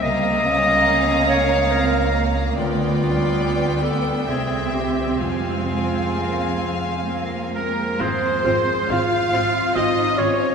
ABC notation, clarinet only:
X:1
M:3/4
L:1/8
Q:1/4=70
K:Fm
V:1 name="Clarinet"
e3 d B z | F3 =A _A G | F4- F z | A F4- F |]